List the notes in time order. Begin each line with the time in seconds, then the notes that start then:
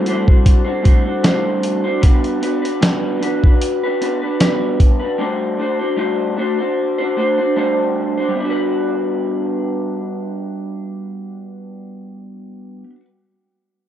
Already playing: G3 C4 E4 F#4 A4
0.06 A3 D4 F#4 C5, closed hi-hat
0.27 D4 F#4 C5, kick
0.46 kick, closed hi-hat
0.64 D4 F#4 C5
0.83 A3 D4 F#4 C5, kick, closed hi-hat
1.05 D4 F#4 C5
1.23 G3 A3 D4 F#4 C5, snare, closed hi-hat
1.63 closed hi-hat
1.84 D4 F#4 C5
2.01 G3 B3 D4 F#4 B4, kick, closed hi-hat
2.24 closed hi-hat
2.40 B3 D4 F#4 B4, closed hi-hat
2.62 D4 F#4 B4, closed hi-hat
2.81 G3 B3 D4 F#4 B4, snare, closed hi-hat
3.20 B3 D4 F#4 B4, closed hi-hat
3.44 D4 F#4 B4, kick
3.62 closed hi-hat
3.83 D4 F#4 B4
4.01 B3 D4 F#4 B4, closed hi-hat
4.22 D4 F#4 B4
4.40 G3 B3 D4 F#4 B4, snare, closed hi-hat
4.80 kick, closed hi-hat
4.99 D4 F#4 B4
5.18 G3 A3 D4 F#4 C5
5.58 A3 D4 F#4 C5
5.79 D4 F#4 C5
5.96 G3 A3 D4 F#4 C5
6.37 A3 D4 F#4 C5
6.59 D4 F#4 C5
6.98 D4 F#4 C5
7.17 A3 D4 F#4 C5
7.38 D4 F#4 C5
7.56 G3 A3 D4 F#4 C5
8.17 D4 F#4 C5
8.28 G3
8.35 B3
8.40 D4
8.45 F#4
8.50 B4